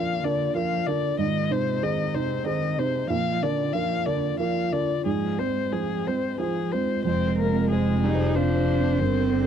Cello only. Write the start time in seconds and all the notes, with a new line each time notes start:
Already playing: F3
0.23 D3
0.55 F3
0.87 D3
1.19 D#3
1.51 C3
1.82 D#3
2.15 C3
2.46 D#3
2.78 C3
3.09 F3
3.42 D3
3.73 F3
4.07 D3
4.39 F3
4.72 D3
5.06 F3
5.39 G#3
5.73 F3
6.07 G#3
6.41 F3
6.74 G#3
7.07 G#3
8.04 D#4
8.36 D4
8.99 C4